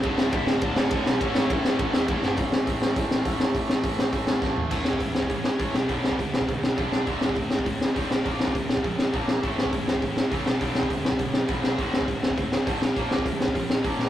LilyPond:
<<
  \new Staff \with { instrumentName = "Lead electric guitar" } { \time 4/4 \key a \mixolydian \tempo 4 = 204 r4 <e' e''>8 <d' d''>4 <cis' cis''>4 <cis' cis''>8~ | <cis' cis''>2~ <cis' cis''>8 r4. | r1 | r1 |
r1 | r1 | r1 | r1 |
r1 | r1 | r1 | r1 | }
  \new Staff \with { instrumentName = "Distorted electric guitar" } { \clef bass \time 4/4 \key a \mixolydian <d, a, d>4 <d, a, d>4 <d, a, d>4 <d, a, d>4 | <a, e a>4 <a, e a>4 <a, e a>4 <a, e a>4 | r1 | r1 |
<a, e a cis' e' a'>2.~ <a, e a cis' e' a'>8 <g, d g b d' g'>8~ | <g, d g b d' g'>2.~ <g, d g b d' g'>8 r8 | <d, a, d a fis'>2.~ <d, a, d a fis'>8 <bes, f bes d' f' bes'>8~ | <bes, f bes d' f' bes'>2.~ <bes, f bes d' f' bes'>8 r8 |
<a, e a cis' e' a'>2.~ <a, e a cis' e' a'>8 <g, d g b d' g'>8~ | <g, d g b d' g'>2.~ <g, d g b d' g'>8 r8 | <d, a, d a fis'>2.~ <d, a, d a fis'>8 <bes, f bes d' f' bes'>8~ | <bes, f bes d' f' bes'>2.~ <bes, f bes d' f' bes'>8 r8 | }
  \new Staff \with { instrumentName = "Distorted electric guitar" } { \clef bass \time 4/4 \key a \mixolydian <d, a, d>2~ <d, a, d>8 <d, a, d>8 <d, a, d>4 | <a, e a>2~ <a, e a>8 <a, e a>8 <a, e a>4 | <a, e a>4 <a, e a>4 <a, e a>4 <a, e a>4 | <a, e a>4 <a, e a>4 <a, e a>4 <a, e a>4 |
<a, e a>4 <a, e>8 r8 <a, e>8 r8 <a, e a>8 r8 | <g, d g>4 <g, d>8 r8 <g, d>8 r8 <g, d g>4 | <d, a, d>4 <d, a,>8 r8 <d, a,>8 r8 <d, a, d>8 r8 | <bes, f bes>4 <bes, f>8 r8 <bes, f>8 r8 <bes, f bes>4 |
<a, e a>4 <a, e>8 r8 <a, e>8 r8 <a, e a>8 r8 | <g, d g>4 <g, d>8 r8 <g, d>8 r8 <g, d g>4 | <d, a, d>4 <d, a,>8 r8 <d, a,>8 r8 <d, a, d>8 r8 | <bes, f bes>4 <bes, f>8 r8 <bes, f>8 r8 <bes, f bes>4 | }
  \new Staff \with { instrumentName = "Overdriven electric guitar" } { \clef bass \time 4/4 \key a \mixolydian <d, a, d a fis'>1 | <a, e a cis' e' a'>1 | <a, e a>4 <a, e a>4 <a, e a>4 <a, e a>4 | <a, e a>4 <a, e a>4 <a, e a>4 <a, e a>4 |
<a, e a>4 <a, e>8 r8 <a, e>8 r8 <a, e a>8 r8 | <g, d g>4 <g, d>8 r8 <g, d>8 r8 <g, d g>4 | <d, a, d>4 <d, a,>8 r8 <d, a,>8 r8 <d, a, d>8 r8 | <bes, f bes>4 <bes, f>8 r8 <bes, f>8 r8 <bes, f bes>4 |
<a, e a>4 <a, e>8 r8 <a, e>8 r8 <a, e a>8 r8 | <g, d g>4 <g, d>8 r8 <g, d>8 r8 <g, d g>4 | <d, a, d>4 <d, a,>8 r8 <d, a,>8 r8 <d, a, d>8 r8 | <bes, f bes>4 <bes, f>8 r8 <bes, f>8 r8 <bes, f bes>4 | }
  \new Staff \with { instrumentName = "Picked electric bass" } { \clef bass \time 4/4 \key a \mixolydian d,,8 d,,8 d,,4 d,,8 a,,8 a,,8 b,,8 | a,,8 a,,8 a,,4 a,,8 e,8 e,8 g,,8 | a,,8 a,,8 a,,8 a,,8 a,,4 a,,4 | a,,8 a,,8 a,,8 a,,8 a,,8 a,,8 a,,8 a,,8 |
a,,8 a,,8 a,,8 e,8 a,,4 a,,8 b,,8 | b,,4 d,8 b,,8 b,,8 b,,8 b,,8 b,,8 | d,,8 d,,8 d,,8 a,,8 d,,4 d,,8 bes,,8 | bes,,4 d,8 bes,,8 bes,,8 bes,,8 bes,,8 bes,,8 |
a,,8 a,,8 a,,8 e,8 a,,4 cis,8 b,,8 | b,,4 d,8 b,,8 b,,8 b,,8 b,,8 b,,8 | d,,8 d,,8 d,,8 a,,8 d,,4 a,,8 bes,,8 | bes,,4 d,8 bes,,8 bes,,8 bes,,8 bes,,8 bes,,8 | }
  \new DrumStaff \with { instrumentName = "Drums" } \drummode { \time 4/4 <bd cymr>8 sn8 <bd cymr>8 sn8 <bd cymr>8 sn8 <bd cymr>8 sn8 | <bd cymr>8 sn8 <bd cymr>8 sn8 <bd cymr>8 sn8 <bd cymr>8 sn8 | <hho bd>8 sn8 <hho bd>8 sn8 <hho bd>8 sn8 <hho bd>8 sn8 | <hho bd>8 sn8 <hho bd>8 sn8 <hho bd>8 sn8 <bd sn>8 tomfh8 |
<cymc bd>8 sn16 bd16 <hho bd>8 sn16 bd16 <hho bd>8 sn8 <hho bd>8 sn8 | <hho bd>8 sn16 bd16 <hho bd>8 sn16 bd16 <hho bd>8 sn8 <hho bd>8 sn8 | <hho bd>8 sn16 bd16 <hho bd>8 sn16 bd16 <hho bd>8 sn8 <hho bd>8 sn8 | <hho bd>8 sn16 bd16 <hho bd>8 sn16 bd16 <hho bd>8 sn8 <hho bd>8 sn8 |
<hho bd>8 sn16 bd16 <hho bd>8 sn16 bd16 <hho bd>8 sn8 <hho bd>8 sn8 | <hho bd>8 sn16 bd16 <hho bd>8 sn16 bd16 <hho bd>8 sn8 <hho bd>8 sn8 | <hho bd>8 sn16 bd16 <hho bd>8 sn16 bd16 <hho bd>8 sn8 <hho bd>8 sn8 | <hho bd>8 sn16 bd16 <hho bd>8 sn16 bd16 <hho bd>8 sn8 <hho bd>8 sn8 | }
>>